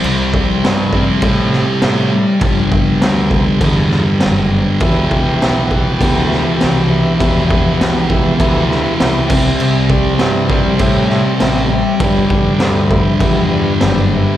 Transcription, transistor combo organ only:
\new Staff \with { instrumentName = "Transistor combo organ" } { \time 4/4 \key e \minor \tempo 4 = 100 r1 | r1 | <g' b' e''>8 <g' b' g''>8 <g' b' e''>8 <g' b' fis''>8 <g' b' g''>8 <g' b' e''>8 <g' b' g''>8 <g' b' e''>8 | <g' b' e''>8 <g' b' e''>8 <g' b' fis''>8 <g' b' e''>8 <g' b' e''>8 <g' b' e''>8 <g' b' e''>8 <g' c'' e''>8~ |
<g' c'' e''>8 <g' c'' d''>8 <g' c'' e''>8 <g' c'' d''>8 <g' c'' e''>8 <g' c'' e''>8 <g' c'' e''>8 <g' c'' e''>8 | <g' b' d''>8 <g' b' d''>8 <g' b' d''>8 <g' b' e''>8 <g' b' e''>8 <g' b' d''>8 <g' b' d''>8 <g' b' e''>8 | }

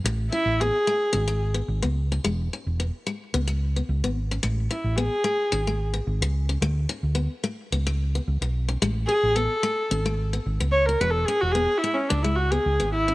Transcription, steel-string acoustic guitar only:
\new Staff \with { instrumentName = "Steel-string acoustic guitar" } { \time 4/4 \key a \major \tempo 4 = 110 r8 cis'8 b8 a8 cis'16 a8 b8 b8 cis'16 | gis8 cis'8 b8 gis8 b16 gis8 b8 b8 cis'16 | gis8 cis'8 b8 a8 cis'16 a8 b8 r8 cis'16 | a8 cis'8 b8 a8 b16 a8 b8 b8 cis'16 |
gis8 cis'8 b8 a8 cis'16 a8 b8 b8 cis'16 | gis8 cis'8 b8 gis8 r16 gis8 b8 b8 cis'16 | }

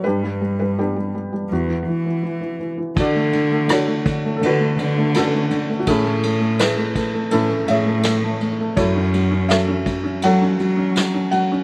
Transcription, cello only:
\new Staff \with { instrumentName = "Cello" } { \clef bass \time 4/4 \key d \lydian \tempo 4 = 82 g,2 e,8 e4. | d2 d8 d4. | a,2 a,8 a,4. | fis,2 fis8 fis4. | }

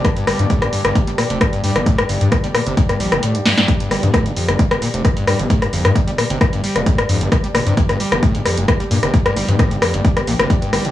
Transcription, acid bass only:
\new Staff \with { instrumentName = "Acid bass" } { \clef bass \time 4/4 \key g \minor \tempo 4 = 132 g,16 g,16 g16 bes,16 a,16 g,16 g,16 g,16 g,16 g16 bes,16 c16 g,16 g,16 g16 bes,16 | a,16 g,16 g,16 g,16 g,16 g16 bes,16 c16 g,16 g,16 g16 bes,16 a,16 g,16 g,16 g,16 | g,16 g,16 g16 bes,16 a,16 g,16 f,16 g,16 g,16 g16 bes,16 c16 g,16 g,16 g16 bes,16 | a,16 g,16 f,16 g,16 g,16 g16 bes,16 c16 g,16 g,16 g16 bes,16 a,16 g,16 f,16 g,16 |
g,16 g16 bes,16 c16 g,16 g,16 g16 bes,16 a,16 g,16 f,16 g,16 g,16 g16 bes,16 c16 | g,16 g,16 g16 bes,16 a,16 g,16 f,16 g,16 g,16 g16 bes,16 c16 g,16 g,16 g16 bes,16 | }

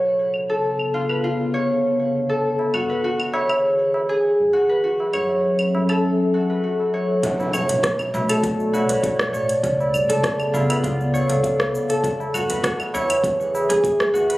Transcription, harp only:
\new Staff \with { instrumentName = "Harp" } { \time 4/4 \key cis \phrygian \tempo 4 = 100 r8. a'16 r8 eis'16 b'16 eis'16 r16 cis''16 r4 a'16 | r8 fis'16 b'16 fis'16 r16 cis''16 r4 gis'16 r8 fis'16 b'16 | fis'16 r16 cis''16 r4 a'16 r8 fis'16 b'16 fis'16 r16 cis''16 r16 | fis'16 r16 cis''16 r4 a'16 r8 fis'16 b'16 fis'16 r16 cis''16 r16 |
r8. a'16 r8 eis'16 b'16 eis'16 r16 cis''16 r4 a'16 | r8 fis'16 b'16 fis'16 r16 cis''16 r4 gis'16 r8 fis'16 b'16 | }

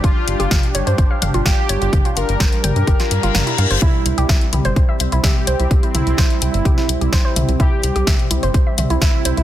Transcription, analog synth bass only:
\new Staff \with { instrumentName = "Analog synth bass" } { \clef bass \time 4/4 \key c \phrygian \tempo 4 = 127 g,,16 r16 g,,16 g,,16 g,,16 r16 g,,16 g,16 g,,16 r16 g,,16 g,,16 g,,16 r16 g,,16 g,,16 | g,,16 r16 g,,16 g,,16 g,,16 r16 g,,16 g,16 g,,16 r16 g,16 g,,16 g,,16 r16 g,16 g,,16 | c,16 r16 c,16 c,16 c,16 r16 c,16 g,,16 c,16 r16 c,16 c,16 c,16 r16 c,16 c,16 | c,16 r16 c,16 c,16 c,16 r16 c,16 g,,16 c,16 r16 c,16 c,16 c,16 r16 c,16 c,16 |
c,16 r16 c,16 c,16 c,16 r16 c,16 g,,16 c,16 r16 c,16 c,16 c,16 r16 c,16 c,16 | }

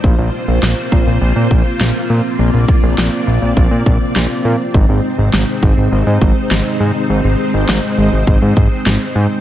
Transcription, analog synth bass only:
\new Staff \with { instrumentName = "Analog synth bass" } { \clef bass \time 4/4 \key bes \mixolydian \tempo 4 = 102 bes,,16 bes,,16 r16 bes,,16 bes,,16 r16 bes,,16 bes,,16 bes,,16 bes,16 bes,,16 r16 bes,,16 r16 bes,16 r16 | bes,,16 bes,,16 r16 bes,,16 bes,,16 r16 bes,,16 bes,,16 bes,,16 bes,16 bes,,16 r16 bes,,16 r16 bes,16 r16 | aes,,16 aes,,16 r16 aes,,16 aes,,16 r16 aes,,16 aes,,16 aes,,16 aes,16 aes,,16 r16 aes,,16 r16 aes,16 r16 | aes,,16 aes,,16 r16 aes,,16 aes,,16 r16 aes,,16 aes,,16 aes,,16 aes,16 aes,,16 r16 aes,,16 r16 aes,16 r16 | }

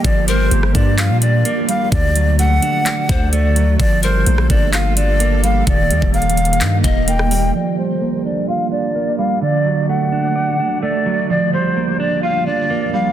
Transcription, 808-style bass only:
\new Staff \with { instrumentName = "808-style bass" } { \clef bass \time 4/4 \key g \minor \tempo 4 = 128 g,,4 g,,8 g,8. bes,8. r4 | d,4. r4 d,4. | g,,4 bes,,8 g,,2~ g,,8 | ees,,8 ees,16 ees,,4~ ees,,16 g,8 ees,,4. |
r1 | r1 | r1 | }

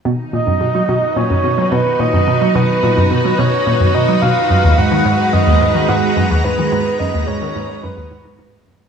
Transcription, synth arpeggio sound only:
\new Staff \with { instrumentName = "Synth arpeggio sound" } { \clef bass \time 4/4 \key b \major \tempo 4 = 108 b,16 r16 ais,16 fis,16 b,16 fis16 b,16 r16 ais,16 fis,16 b,16 fis16 b,16 r16 ais,16 fis,16 | b,16 fis16 b,16 r16 ais,16 fis,16 b,16 fis16 b,16 r16 ais,16 fis,16 b,16 fis16 b,16 r16 | fis,16 dis,16 gis,16 dis16 gis,16 r16 fis,16 dis,16 gis,16 dis16 gis,16 r16 fis,16 dis,16 gis,16 dis16 | gis,16 r16 fis,16 dis,16 gis,16 dis16 gis,16 r16 fis,16 dis,16 gis,16 gis,16 gis,16 r16 fis,16 gis,16 | }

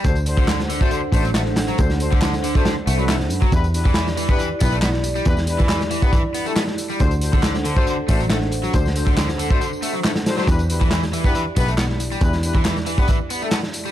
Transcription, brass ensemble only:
\new Staff \with { instrumentName = "Brass ensemble" } { \time 4/4 \key e \minor \tempo 4 = 138 <d' fis' a' c''>16 r16 <d' fis' a' c''>8 r8. <d' fis' a' c''>8 r16 <d' fis' a' c''>16 r4 r16 | <d' fis' a' c''>16 r16 <d' fis' a' c''>16 r4 <d' fis' a' c''>16 r8. <d' fis' a' b'>16 r4 | <d' e' g' b'>16 r16 <d' e' g' b'>8 r8. <d' e' g' b'>8 r16 <d' e' g' b'>16 r4 r16 | <d' e' g' b'>16 r16 <d' e' g' b'>16 r4 <d' e' g' b'>16 r8. <d' e' g' a'>16 r4 |
<d' fis' a' c''>16 r16 <d' fis' a' c''>8 r8. <d' fis' a' c''>8 r16 <d' fis' a' c''>16 r4 r16 | <d' fis' a' c''>16 r16 <d' fis' a' c''>16 r4 <d' fis' a' c''>16 r4. <d' fis' a' c''>16 <d' fis' a' c''>16 | <d' e' g' b'>16 r16 <d' e' g' b'>8 r8. <d' e' g' b'>8 r16 <d' e' g' b'>16 r4 r16 | <d' e' g' b'>16 r16 <d' e' g' b'>16 r4 <d' e' g' b'>16 r8. <d' e' g' a'>16 r4 | }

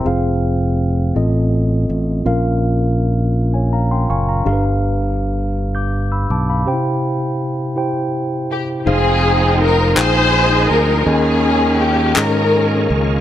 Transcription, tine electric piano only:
<<
  \new Staff \with { instrumentName = "Tine electric piano" } { \time 6/8 \key c \phrygian \tempo 4. = 54 << { <c'' g''>16 r2 r8. | r4. r16 <des'' aes''>16 <f'' bes''>16 <g'' c'''>16 <f'' aes'' des'''>16 <f'' bes''>16~ | <f'' bes''>16 r4. <d''' g'''>8 <b'' e'''>16 <a'' d'''>16 <f'' b''>16~ | <f'' b''>16 r2 r8. |
\key f \minor r2. | r2. | } \\ { <c' f' aes' f''>4 r8 <c' f' a' ees''>4 r8 | <des' f' bes' f''>4 r2 | <d' g' a' b' f''>4 r2 | <des' e' g' c'' g''>4 r8 <e' g' c'' g''>4 r8 |
<ees' aes' c'' f''>4 r8 <ees' aes' c'' g''>4 r8 | <des' aes' bes' ees''>4 r8 <des' aes' bes' ees''>4 r8 | } >> }
  \new Staff \with { instrumentName = "Tine electric piano" } { \clef bass \time 6/8 \key c \phrygian r4. a,4. | bes,4. r4. | g,4. r4. | c4. r4. |
\key f \minor r2. | ees4. r4. | }
>>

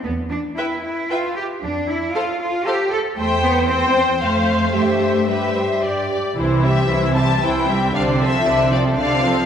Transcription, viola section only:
\new Staff \with { instrumentName = "Viola section" } { \time 3/4 \key c \major \tempo 4 = 115 r4 b'4 b'4 | r4 a'4 a'4 | c''4 c''4 c''4 | g'4 g'4 g'8 r8 |
<e e'>8 <g c'>8 <e e'>8 <g c'>8 <e e'>8 <g c'>8 | <d d'>8 <f c'>8 <d d'>8 <f c'>8 <d d'>8 <f c'>8 | }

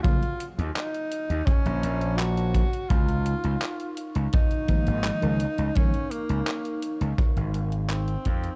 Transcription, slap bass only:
\new Staff \with { instrumentName = "Slap bass" } { \clef bass \time 4/4 \key des \major \tempo 4 = 84 r8. ees,16 r8. ees,16 r16 bes,,16 bes,,4 r8 | des,8 r16 des,16 r8. des,16 r8. aes,,16 r16 des,16 r16 des,16 | r8. des,16 r8. des,16 r16 aes,,4 r16 f,16 r16 | }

